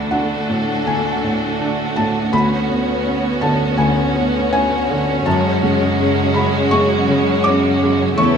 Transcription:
Already playing: felt piano D2 A3 D5, cello section D2, harp D3 A3 A4, viola section A3 D4, violin section F#4 A4
0.11 felt piano D4 F#5, harp F#4
0.49 felt piano A2, harp D4
0.86 harp D3, felt piano A3 G#5
1.23 felt piano A2, harp A3
1.60 felt piano D4, harp F#4
1.96 felt piano A2 A5, harp D4
2.32 felt piano D2 B5, harp D3, viola section B3 C#4, violin section C#5
2.69 harp B3, felt piano B3
3.05 felt piano C#4, harp F#4
3.41 felt piano D3 A5, harp C#4
3.78 felt piano D2 G#5, harp D3
4.15 felt piano B3, harp B3
4.52 felt piano C#4 G#5, harp F#4
4.89 felt piano D3, harp C#4
5.25 harp F#2, cello section F#2, felt piano F#2 A5, viola section G#3, violin section F#4
5.62 harp C#3, felt piano G#3
5.98 harp C#4, felt piano C#4
6.34 felt piano C#3 B5, harp G#3
6.70 harp F#2, felt piano G#3 C#6
7.07 harp C#3, felt piano C#3
7.44 harp C#4, felt piano C#4 D6
7.81 felt piano C#3, harp G#3
8.17 cello section E2, felt piano E2 C#6, harp E3, viola section A3 E4, violin section A4 C#5

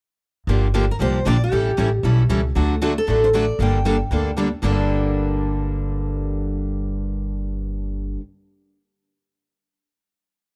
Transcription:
0.47 upright bass G1, steel-string acoustic guitar D3 F3 A#3 D4 G4
0.74 steel-string acoustic guitar D3 F3 A#3 D4 G4
0.91 steel-string acoustic guitar A#4
0.99 upright bass C2, steel-string acoustic guitar D3 F3 A#3 D4 G4 C5
1.26 upright bass A#1, steel-string acoustic guitar D3 F3 A#3 D4 G4 D5
1.44 steel-string acoustic guitar G4
1.52 upright bass A1, steel-string acoustic guitar E3 G3 C#4 E4 A4
1.78 upright bass A1, steel-string acoustic guitar E3 G3 C#4 E4 A4
2.03 upright bass B1, steel-string acoustic guitar E3 G3 C#4 E4 A4
2.29 upright bass C#2, steel-string acoustic guitar E3 G3 C#4 E4 A4
2.55 upright bass D2, steel-string acoustic guitar D3 F#3 A3 D4 F#4 A4
2.82 steel-string acoustic guitar D3 F#3 A3 D4 F#4 A4
2.98 steel-string acoustic guitar A4
3.07 upright bass A1, steel-string acoustic guitar D3 F#3 A3 D4 F#4 A4
3.24 steel-string acoustic guitar C5
3.33 steel-string acoustic guitar D3 F#3 A3 D4 F#4 A4 D5
3.59 upright bass G1, steel-string acoustic guitar D3 G3 A#3 D4 A4 G5
3.85 steel-string acoustic guitar D3 G3 A#3 D4 A4
4.11 upright bass D2, steel-string acoustic guitar D3 G3 A#3 D4 A4
4.38 steel-string acoustic guitar D3 G3 A#3 D4 A4
4.63 upright bass G1, steel-string acoustic guitar G2 D3 G3 A#3 D4 A4

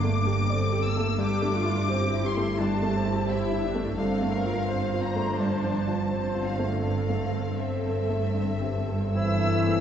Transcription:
Already playing: double bass section G1, grand piano G2 D3 A3 G4 D5, cello section G2, viola section A#3 D4, violin section D6
0.04 grand piano A3
0.27 grand piano G4
0.50 viola section C4 A4, grand piano D5
0.72 grand piano G4
0.85 viola section A#3, violin section E6
0.97 grand piano A3
1.18 grand piano G2, viola section D4 G4, violin section D6
1.42 grand piano A3
1.55 viola section F4
1.65 grand piano E4
1.89 viola section C4 G4, grand piano C5
2.13 grand piano E4
2.25 viola section E4, violin section C6
2.37 grand piano A3
2.60 grand piano G3, viola section D4 G4, violin section A5
2.82 grand piano A3
2.94 viola section C4
3.06 grand piano E4
3.28 viola section E4, grand piano C5, violin section E5
3.52 grand piano E4
3.63 viola section D4
3.75 grand piano A3
3.98 double bass section G1, grand piano G2, cello section G2, viola section C4 A4, violin section F5
4.22 grand piano A3
4.33 viola section A#4
4.46 grand piano F4
4.69 viola section C4 C5, grand piano C5
4.93 grand piano F4
5.03 viola section D4, violin section A#5
5.16 grand piano A3
5.39 grand piano G2, violin section A5
5.64 grand piano F3
5.88 grand piano F4
6.11 viola section C4 C5, grand piano C5
6.35 grand piano F4
6.44 violin section F5
6.59 grand piano A3
6.82 grand piano G2, viola section C4 A4, violin section F5
7.09 grand piano A3
7.35 grand piano A4
7.59 grand piano C5, violin section E5
7.85 grand piano A4
8.09 grand piano A3
8.35 grand piano G2
8.61 grand piano G3
8.88 grand piano A4
9.15 french horn section E3, cor anglais E4, grand piano C5, flute section E5, violin section E6
9.43 grand piano A4
9.68 grand piano A3

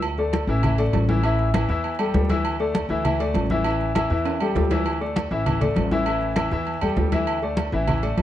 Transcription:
Already playing: upright bass D2
0.02 high conga, low agogo
0.18 grand piano A3 A4 D5, high conga
0.33 high conga, low timbale, low agogo
0.47 upright bass A1, grand piano E3 E4 E5, high conga
0.63 grand piano E3 E4 E5, high conga, low conga, low agogo
0.78 grand piano A3 A4 D5, high conga, low agogo
0.93 upright bass A1, high conga, low timbale, low agogo
1.09 grand piano E3 E4 E5, high conga
1.23 grand piano E3 E4 E5, high conga, low agogo
1.39 high conga
1.54 grand piano E3 E4 E5, high conga, low timbale, low agogo
1.69 upright bass E2, grand piano E3 E4 E5, high conga
1.84 high conga, low agogo
1.99 grand piano G3 G4 A4, high conga, low agogo
2.14 upright bass D2, grand piano G3 G4 A4, high conga, low timbale
2.29 grand piano E3 E4 E5, high conga, low agogo
2.45 high conga, low agogo
2.60 grand piano A3 A4 D5, high conga
2.75 high conga, low timbale, low agogo
2.89 upright bass D2, grand piano E3 E4 E5, high conga
3.05 grand piano E3 E4 E5, high conga, low conga, low agogo
3.20 grand piano A3 A4 D5, high conga, low agogo
3.34 upright bass A1, high conga, low timbale, low agogo
3.50 grand piano E3 E4 E5, high conga
3.64 grand piano E3 E4 E5, high conga, low agogo
3.81 high conga
3.95 grand piano E3 E4 E5, high conga, low timbale, low agogo
4.10 upright bass E2, grand piano E3 E4 E5, high conga
4.25 high conga, high timbale, low agogo
4.40 grand piano G3 G4 A4, high conga, low agogo
4.55 upright bass D2, grand piano G3 G4 A4, high conga, low timbale
4.71 grand piano E3 E4 E5, high conga, low timbale, low agogo
4.86 high conga, low agogo
5.01 grand piano A3 A4 D5, high conga
5.16 high conga, low timbale, low agogo
5.31 upright bass A1, grand piano E3 E4 E5, high conga
5.46 grand piano E3 E4 E5, high conga, low conga, low agogo
5.60 grand piano A3 A4 D5, high conga, low conga, low agogo
5.76 upright bass A1, high conga, low timbale, low agogo
5.91 grand piano E3 E4 E5, high conga
6.06 grand piano E3 E4 E5, high conga, low agogo
6.21 high conga
6.36 grand piano E3 E4 E5, high conga, low timbale, low agogo
6.51 upright bass E2, grand piano E3 E4 E5, high conga
6.67 high conga, low agogo
6.82 upright bass E2, grand piano G3 G4 A4, high conga, low agogo
6.96 upright bass D2, grand piano G3 G4 A4, high conga, low timbale
7.12 grand piano E3 E4 E5, high conga, low agogo
7.27 high conga, low agogo
7.42 grand piano A3 A4 D5, high conga
7.57 high conga, low timbale, low agogo
7.72 upright bass A1, grand piano E3 E4 E5, high conga
7.88 grand piano E3 E4 E5, high conga, low conga, low agogo
8.03 grand piano A3 A4 D5, high conga, low agogo
8.17 upright bass A1, high conga, low timbale, low agogo

